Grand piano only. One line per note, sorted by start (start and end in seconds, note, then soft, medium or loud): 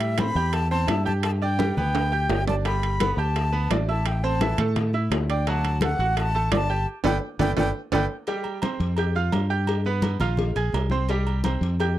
0.00 0.12 G3 medium
0.00 0.13 G4 medium
0.00 0.13 G5 medium
0.20 0.34 C4 medium
0.20 0.34 C5 medium
0.20 0.34 C6 medium
0.36 0.65 G4 medium
0.36 0.65 G5 medium
0.36 0.65 G6 medium
0.71 0.86 C4 medium
0.71 0.86 C5 medium
0.71 0.86 C6 medium
0.87 1.03 E4 medium
0.87 1.03 E5 medium
0.87 1.03 E6 medium
1.05 1.35 G4 medium
1.05 1.35 G5 medium
1.05 1.35 G6 medium
1.42 1.56 D4 medium
1.42 1.57 D5 medium
1.42 1.57 D6 medium
1.59 1.74 G3 medium
1.59 1.74 G4 medium
1.59 1.74 G5 medium
1.77 2.06 B3 medium
1.77 2.06 B4 medium
1.77 2.07 B5 medium
2.12 2.41 G4 medium
2.12 2.41 G5 medium
2.12 2.42 G6 medium
2.47 2.62 D4 medium
2.47 2.62 D5 medium
2.47 2.62 D6 medium
2.65 2.94 G3 medium
2.65 2.94 G4 medium
2.65 2.94 G5 medium
3.01 3.15 B3 medium
3.01 3.15 B4 medium
3.01 3.15 B5 medium
3.18 3.47 G4 medium
3.18 3.47 G5 medium
3.18 3.47 G6 medium
3.53 3.68 B3 medium
3.53 3.67 B4 medium
3.53 3.68 B5 medium
3.71 3.85 D4 medium
3.71 3.85 D5 medium
3.71 3.86 D6 medium
3.89 4.18 E4 medium
3.89 4.17 E5 medium
3.89 4.18 E6 medium
4.24 4.38 C4 medium
4.24 4.38 C5 medium
4.24 4.38 C6 medium
4.41 4.56 E3 medium
4.41 4.56 E4 medium
4.41 4.56 E5 medium
4.59 4.88 A3 medium
4.59 4.88 A4 medium
4.59 4.88 A5 medium
4.94 5.23 E4 medium
4.94 5.23 E5 medium
4.94 5.23 E6 medium
5.30 5.44 D4 medium
5.30 5.44 D5 medium
5.30 5.44 D6 medium
5.48 5.76 F#3 medium
5.48 5.76 F#4 medium
5.48 5.77 F#5 medium
5.82 5.96 A3 medium
5.82 5.96 A4 medium
5.82 5.97 A5 medium
6.00 6.28 F#4 medium
6.00 6.29 F#5 medium
6.00 6.29 F#6 medium
6.35 6.49 A3 medium
6.35 6.49 A4 medium
6.35 6.50 A5 medium
6.52 6.67 D4 medium
6.52 6.67 D5 medium
6.52 6.67 D6 medium
6.70 6.84 G4 medium
6.70 6.84 G5 medium
6.70 6.84 G6 medium
7.04 7.16 A4 loud
7.04 7.16 B4 loud
7.04 7.16 D5 loud
7.39 7.51 A4 loud
7.39 7.51 B4 loud
7.39 7.51 D5 loud
7.57 7.69 A4 medium
7.57 7.69 B4 medium
7.57 7.69 D5 loud
7.93 8.04 A4 loud
7.93 8.04 B4 loud
7.93 8.04 D5 loud
8.28 8.57 G3 medium
8.28 8.57 G4 medium
8.28 8.57 G5 medium
8.62 8.91 C4 medium
8.62 8.92 C5 medium
8.62 8.92 C6 medium
8.98 9.13 G4 medium
8.98 9.13 G5 medium
8.98 9.13 G6 medium
9.16 9.44 F4 medium
9.16 9.45 F5 medium
9.16 9.45 F6 medium
9.50 9.79 G4 medium
9.50 9.79 G5 medium
9.50 9.79 G6 medium
9.86 10.15 B3 medium
9.86 10.15 B4 medium
9.86 10.15 B5 medium
10.20 10.50 F4 medium
10.20 10.50 F5 medium
10.20 10.50 F6 medium
10.56 10.85 G#4 medium
10.56 10.85 G#5 medium
10.56 10.85 G#6 medium
10.91 11.06 C4 medium
10.91 11.06 C5 medium
10.91 11.06 C6 medium
11.10 11.38 G3 medium
11.10 11.39 G4 medium
11.10 11.39 G5 medium
11.45 11.73 C4 medium
11.45 11.73 C5 medium
11.45 11.74 C6 medium
11.80 11.94 G4 medium
11.80 11.95 G5 medium
11.80 11.95 G6 medium